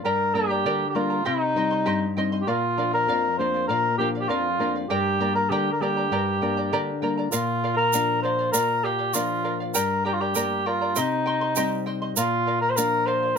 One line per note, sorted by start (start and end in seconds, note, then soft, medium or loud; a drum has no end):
0.04 0.64 G2 medium
0.04 0.35 G4 medium
0.04 0.36 A#4 medium
0.04 0.34 A#4 medium
0.04 0.35 D5 medium
0.04 0.34 G5 medium
0.04 0.36 A#5 medium
0.34 0.83 G3 soft
0.34 0.83 A#3 soft
0.34 0.84 D4 soft
0.34 0.88 G4 medium
0.34 0.50 A#4 medium
0.34 0.50 D5 medium
0.34 0.50 G5 medium
0.34 0.49 A#5 medium
0.50 0.65 A#4 soft
0.50 0.65 D5 medium
0.50 0.65 A#5 medium
0.65 1.24 D3 medium
0.65 0.96 G4 medium
0.65 0.94 A#4 medium
0.65 0.94 D5 medium
0.65 0.93 G5 medium
0.65 0.95 A#5 medium
0.90 0.97 G4 medium
0.95 1.20 G3 soft
0.95 1.20 A#3 soft
0.95 1.20 D4 medium
0.95 1.25 F4 medium
0.95 1.10 A#4 medium
0.95 1.10 D5 medium
0.95 1.10 G5 medium
0.95 1.09 A#5 medium
1.10 1.25 A#4 soft
1.10 1.25 D5 soft
1.10 1.26 A#5 soft
1.25 1.85 C3 medium
1.25 2.13 D#4 medium
1.25 1.56 G4 medium
1.25 1.55 C5 medium
1.25 1.56 D#5 medium
1.25 1.55 G5 medium
1.25 1.56 C6 medium
1.56 2.05 G3 soft
1.56 2.04 C4 soft
1.56 2.05 D#4 medium
1.56 1.71 C5 medium
1.56 1.70 D#5 medium
1.56 1.72 G5 medium
1.56 1.69 C6 medium
1.71 1.85 C5 soft
1.71 1.85 D#5 soft
1.71 1.86 C6 soft
1.86 2.45 G2 medium
1.86 2.17 G4 medium
1.86 2.16 C5 medium
1.86 2.17 D#5 medium
1.86 2.15 G5 medium
1.86 2.17 C6 medium
2.17 2.41 G3 soft
2.17 2.42 C4 soft
2.17 2.42 D#4 medium
2.17 2.32 C5 medium
2.17 2.32 D#5 medium
2.17 2.32 G5 medium
2.17 2.31 C6 medium
2.32 2.47 C5 soft
2.32 2.47 D#5 soft
2.32 2.48 C6 soft
2.41 2.50 G4 medium
2.47 3.06 A#2 medium
2.47 2.94 F4 medium
2.47 2.76 A#4 medium
2.47 2.77 D5 medium
2.47 2.78 F5 medium
2.77 3.26 F3 soft
2.77 3.26 A#3 soft
2.77 3.27 D4 soft
2.77 2.93 A#4 medium
2.77 2.93 D5 medium
2.77 2.92 F5 medium
2.93 3.36 A#4 medium
2.93 3.08 D5 soft
2.93 3.08 F5 soft
3.08 3.67 F2 medium
3.08 3.38 A#4 medium
3.08 3.39 D5 medium
3.08 3.39 F5 medium
3.38 3.87 F3 soft
3.38 3.87 A#3 soft
3.38 3.88 D4 medium
3.38 3.54 A#4 soft
3.38 3.67 C5 medium
3.38 3.55 D5 medium
3.38 3.53 F5 medium
3.54 3.68 D5 soft
3.54 3.69 F5 soft
3.68 4.28 A#2 medium
3.68 3.96 A#4 medium
3.68 3.98 A#4 medium
3.68 3.99 D5 medium
3.68 4.00 F5 medium
3.98 4.47 F3 soft
3.98 4.48 A#3 soft
3.98 4.48 D4 soft
3.98 4.09 G4 medium
3.98 4.15 A#4 soft
3.98 4.15 D5 medium
3.98 4.14 F5 medium
4.15 4.29 D5 soft
4.15 4.29 F5 medium
4.21 4.30 G4 medium
4.28 4.88 F2 medium
4.28 4.74 F4 medium
4.28 4.59 A#4 medium
4.28 4.59 D5 medium
4.28 4.60 F5 medium
4.59 4.84 F3 soft
4.59 4.84 A#3 soft
4.59 4.84 D4 medium
4.59 4.75 A#4 soft
4.59 4.75 D5 medium
4.59 4.74 F5 medium
4.75 4.89 D5 soft
4.75 4.90 F5 soft
4.89 5.49 G2 medium
4.89 5.32 G4 medium
4.89 5.21 G4 medium
4.89 5.19 A#4 medium
4.89 5.20 D5 medium
4.89 5.19 G5 medium
4.89 5.20 A#5 medium
5.19 5.68 G3 soft
5.19 5.69 A#3 soft
5.19 5.69 D4 soft
5.19 5.36 A#4 medium
5.19 5.36 D5 medium
5.19 5.36 G5 medium
5.19 5.34 A#5 medium
5.35 5.51 A#4 medium
5.35 5.51 A#4 soft
5.35 5.51 D5 soft
5.35 5.51 A#5 soft
5.50 6.09 D3 medium
5.50 5.72 G4 medium
5.50 5.82 G4 medium
5.50 5.81 A#4 medium
5.50 5.81 D5 medium
5.50 5.81 G5 medium
5.50 5.82 A#5 medium
5.72 5.83 A#4 medium
5.80 6.05 G3 medium
5.80 6.05 A#3 soft
5.80 6.05 D4 medium
5.80 7.03 G4 medium
5.80 5.97 A#4 medium
5.80 5.96 D5 medium
5.80 5.97 G5 soft
5.80 5.96 A#5 medium
5.97 6.11 A#4 soft
5.97 6.12 D5 soft
5.97 6.12 A#5 soft
6.11 6.70 G2 medium
6.11 6.42 G4 medium
6.11 6.41 A#4 medium
6.11 6.42 D5 medium
6.11 6.40 G5 medium
6.11 6.42 A#5 medium
6.41 6.90 G3 soft
6.41 6.90 A#3 soft
6.41 6.91 D4 soft
6.41 6.57 A#4 medium
6.41 6.57 D5 medium
6.41 6.57 G5 medium
6.41 6.56 A#5 medium
6.57 6.72 A#4 soft
6.57 6.72 D5 soft
6.57 6.72 A#5 medium
6.72 7.31 D3 medium
6.72 7.03 G4 medium
6.72 7.02 A#4 medium
6.72 7.02 D5 medium
6.72 7.01 G5 medium
6.72 7.02 A#5 medium
7.02 7.26 G3 soft
7.02 7.27 A#3 soft
7.02 7.27 D4 soft
7.02 7.18 A#4 medium
7.02 7.17 D5 medium
7.02 7.17 G5 medium
7.02 7.16 A#5 medium
7.18 7.31 A#4 soft
7.18 7.31 D5 soft
7.18 7.33 A#5 medium
7.30 8.50 A#2 medium
7.30 7.74 F4 medium
7.30 7.62 A#4 medium
7.30 7.63 D5 medium
7.30 7.63 F5 medium
7.30 shaker medium
7.63 7.78 A#4 medium
7.63 7.79 D5 medium
7.63 7.77 F5 medium
7.76 8.20 A#4 loud
7.76 7.93 D5 soft
7.76 7.93 F5 soft
7.93 8.52 F3 soft
7.93 8.53 A#3 soft
7.93 8.53 D4 medium
7.93 8.22 A#4 medium
7.93 8.23 D5 medium
7.93 8.24 F5 medium
7.93 shaker medium
8.23 8.39 A#4 medium
8.23 8.51 C5 medium
8.23 8.39 D5 medium
8.23 8.37 F5 medium
8.39 8.53 D5 soft
8.39 8.53 F5 medium
8.52 9.71 A#2 medium
8.52 8.86 A#4 loud
8.52 8.83 A#4 medium
8.52 8.83 D5 medium
8.52 8.84 F5 medium
8.52 shaker medium
8.84 9.15 G4 medium
8.84 8.99 A#4 medium
8.84 8.99 D5 medium
8.84 8.98 F5 medium
8.99 9.14 D5 soft
8.99 9.14 F5 medium
9.14 9.73 F3 medium
9.14 9.73 A#3 soft
9.14 9.74 D4 medium
9.14 9.60 F4 medium
9.14 9.43 A#4 medium
9.14 9.43 D5 medium
9.14 9.44 F5 medium
9.14 shaker medium
9.44 9.60 A#4 medium
9.44 9.60 D5 medium
9.44 9.59 F5 medium
9.60 9.74 D5 soft
9.60 9.74 F5 soft
9.74 10.93 G2 medium
9.74 10.05 G4 medium
9.74 10.03 A#4 medium
9.74 10.04 A#4 medium
9.74 10.05 D5 medium
9.74 10.03 G5 medium
9.74 10.05 A#5 medium
9.74 shaker medium
10.05 10.15 G4 medium
10.05 10.21 A#4 medium
10.05 10.20 D5 medium
10.05 10.20 G5 medium
10.05 10.20 A#5 medium
10.13 10.22 F4 medium
10.21 10.68 G4 medium
10.21 10.34 A#4 soft
10.21 10.35 D5 soft
10.21 10.35 A#5 medium
10.35 10.95 G3 medium
10.35 10.95 A#3 soft
10.35 10.95 D4 medium
10.35 10.66 G4 medium
10.35 10.65 A#4 medium
10.35 10.66 D5 medium
10.35 10.65 G5 medium
10.35 10.66 A#5 medium
10.35 shaker medium
10.66 11.00 F4 medium
10.66 10.81 A#4 medium
10.66 10.81 D5 medium
10.66 10.81 G5 medium
10.66 10.80 A#5 medium
10.81 10.96 A#4 soft
10.81 10.96 D5 soft
10.81 10.96 A#5 soft
10.96 12.14 C3 medium
10.96 11.88 D#4 medium
10.96 11.26 G4 medium
10.96 11.25 C5 medium
10.96 11.26 D#5 medium
10.96 11.24 G5 medium
10.96 11.26 C6 medium
10.96 shaker medium
11.26 11.41 C5 medium
11.26 11.41 D#5 medium
11.26 11.41 G5 medium
11.26 11.40 C6 medium
11.41 11.56 C5 soft
11.41 11.56 D#5 soft
11.41 11.56 C6 soft
11.56 12.15 G3 soft
11.56 12.15 C4 soft
11.56 12.16 D#4 medium
11.56 11.87 G4 medium
11.56 11.85 C5 medium
11.56 11.86 D#5 medium
11.56 11.85 G5 medium
11.56 11.86 C6 medium
11.56 shaker medium
11.86 12.02 C5 medium
11.86 12.01 D#5 medium
11.86 12.01 G5 medium
11.86 12.00 C6 medium
12.02 12.16 C5 soft
12.02 12.17 D#5 soft
12.02 12.17 C6 soft
12.16 13.34 A#2 medium
12.16 12.60 F4 medium
12.16 12.46 A#4 medium
12.16 12.46 D5 medium
12.16 12.47 F5 medium
12.16 shaker medium
12.47 12.62 A#4 medium
12.47 12.62 D5 medium
12.47 12.61 F5 medium
12.61 12.71 A#4 loud
12.61 12.77 D5 soft
12.61 12.77 F5 soft
12.70 12.78 C5 medium
12.76 13.36 F3 soft
12.76 13.36 A#3 soft
12.76 13.36 D4 medium
12.76 13.08 A#4 loud
12.76 13.05 A#4 medium
12.76 13.06 D5 medium
12.76 13.07 F5 medium
12.76 shaker medium
13.06 13.22 A#4 medium
13.06 13.37 C5 medium
13.06 13.23 D5 medium
13.06 13.21 F5 medium
13.22 13.36 D5 soft
13.22 13.37 F5 soft